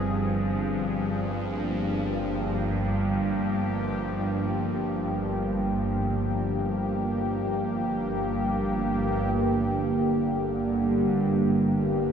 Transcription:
0.00 9.34 G1 medium
0.00 9.33 G2 medium
0.00 9.35 G2 medium
0.00 9.34 F3 medium
0.00 1.82 C4 medium
0.00 9.37 F4 medium
0.00 2.47 G#4 medium
1.45 12.12 A#3 medium
2.16 12.12 G4 medium
9.33 12.12 G1 medium
9.33 12.12 G2 medium
9.33 12.12 D3 medium

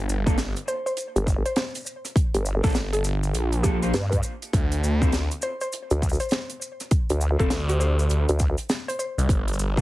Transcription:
0.08 0.53 G1 medium
0.08 shaker medium
0.26 0.35 A#3 medium
0.26 0.35 D4 medium
0.26 0.36 F4 medium
0.26 0.35 A4 medium
0.26 kick loud
0.26 shaker medium
0.38 snare loud
0.38 closed hi-hat medium
0.38 shaker medium
0.56 closed hi-hat medium
0.56 shaker soft
0.68 0.80 C5 medium
0.68 shaker medium
0.86 0.93 C5 medium
0.86 shaker medium
0.97 closed hi-hat medium
0.97 shaker medium
1.16 1.43 G1 medium
1.16 closed hi-hat medium
1.16 shaker soft
1.27 kick loud
1.27 cross-stick soft
1.27 shaker medium
1.46 1.53 C5 medium
1.46 closed hi-hat medium
1.46 shaker medium
1.56 1.68 C5 medium
1.56 snare loud
1.56 closed hi-hat medium
1.56 shaker medium
1.75 closed hi-hat medium
1.75 shaker soft
1.77 shaker soft
1.80 shaker soft
1.82 shaker soft
1.84 shaker soft
1.86 shaker medium
2.05 cross-stick soft
2.05 closed hi-hat medium
2.05 shaker medium
2.16 kick loud
2.16 closed hi-hat medium
2.16 shaker medium
2.34 2.61 G1 loud
2.34 closed hi-hat medium
2.34 shaker soft
2.46 shaker medium
2.63 2.73 A#1 loud
2.63 2.73 A#3 medium
2.63 2.73 D4 medium
2.63 2.73 F4 medium
2.63 2.76 A4 medium
2.63 2.73 A4 medium
2.63 kick loud
2.63 shaker medium
2.66 shaker soft
2.69 shaker soft
2.72 3.33 G1 loud
2.72 snare loud
2.72 shaker soft
2.75 closed hi-hat medium
2.75 shaker medium
2.93 3.53 A4 medium
2.93 closed hi-hat medium
2.93 shaker soft
3.04 cross-stick soft
3.04 shaker medium
3.23 shaker soft
3.34 3.63 A#1 loud
3.34 closed hi-hat medium
3.34 shaker medium
3.52 closed hi-hat medium
3.52 shaker soft
3.63 3.92 A#1 loud
3.63 3.80 A#3 medium
3.63 3.80 D4 medium
3.63 3.80 F4 medium
3.63 4.49 G4 medium
3.63 3.80 A4 medium
3.63 kick loud
3.63 cross-stick medium
3.63 shaker medium
3.82 3.92 A#3 medium
3.82 3.92 D4 medium
3.82 3.92 F4 medium
3.82 3.92 C5 medium
3.82 closed hi-hat medium
3.82 shaker medium
3.94 4.22 G2 loud
3.94 snare loud
3.94 closed hi-hat medium
3.94 shaker medium
4.12 kick medium
4.12 closed hi-hat medium
4.12 shaker soft
4.23 shaker medium
4.42 closed hi-hat medium
4.42 shaker soft
4.53 4.81 D2 loud
4.53 kick loud
4.53 closed hi-hat medium
4.53 shaker medium
4.72 closed hi-hat medium
4.72 shaker soft
4.83 5.28 D2 loud
4.83 shaker medium
5.01 5.11 C4 medium
5.01 5.11 E4 medium
5.01 5.11 F4 medium
5.01 5.11 A4 medium
5.01 kick loud
5.01 shaker soft
5.12 snare loud
5.12 closed hi-hat medium
5.12 shaker medium
5.31 closed hi-hat medium
5.31 shaker soft
5.42 5.55 C5 medium
5.42 shaker medium
5.61 5.69 C5 medium
5.61 shaker medium
5.72 closed hi-hat medium
5.72 shaker medium
5.91 6.18 D2 medium
5.91 closed hi-hat medium
5.91 shaker soft
6.02 kick loud
6.02 cross-stick medium
6.02 shaker medium
6.09 shaker medium
6.13 shaker medium
6.20 6.28 C5 medium
6.20 closed hi-hat medium
6.20 shaker medium
6.21 shaker soft
6.29 closed hi-hat medium
6.29 shaker soft
6.32 6.44 C5 medium
6.32 snare loud
6.32 shaker medium
6.50 closed hi-hat medium
6.50 shaker soft
6.62 shaker medium
6.80 cross-stick soft
6.80 closed hi-hat medium
6.80 shaker medium
6.91 kick loud
6.91 closed hi-hat medium
6.91 shaker medium
7.09 7.37 D2 loud
7.09 closed hi-hat medium
7.09 shaker soft
7.21 shaker medium
7.39 7.49 F1 loud
7.39 7.48 C4 medium
7.39 7.48 E4 medium
7.39 7.48 F4 medium
7.39 7.48 A4 medium
7.39 7.52 A4 medium
7.39 kick loud
7.39 shaker medium
7.50 8.08 D2 loud
7.50 snare loud
7.50 closed hi-hat medium
7.50 shaker medium
7.69 7.78 G4 medium
7.69 closed hi-hat medium
7.69 shaker soft
7.80 7.99 C5 medium
7.80 cross-stick soft
7.80 shaker medium
7.99 shaker soft
8.10 8.26 D2 loud
8.10 closed hi-hat medium
8.10 shaker medium
8.29 8.56 D2 loud
8.29 closed hi-hat medium
8.29 shaker soft
8.39 kick loud
8.39 cross-stick medium
8.39 shaker medium
8.57 closed hi-hat medium
8.57 shaker soft
8.69 snare loud
8.69 closed hi-hat medium
8.69 shaker medium
8.88 8.95 C5 medium
8.88 closed hi-hat medium
8.88 shaker soft
8.99 9.11 C5 medium
8.99 shaker medium
9.18 9.27 C2 loud
9.18 closed hi-hat medium
9.18 shaker medium
9.29 9.57 G1 loud
9.29 kick loud
9.29 closed hi-hat medium
9.29 shaker medium
9.48 closed hi-hat medium
9.53 shaker soft
9.59 9.81 G1 medium
9.59 shaker medium
9.77 9.81 A#3 medium
9.77 9.81 D4 medium
9.77 9.81 F4 medium
9.77 9.81 A4 medium
9.77 kick loud

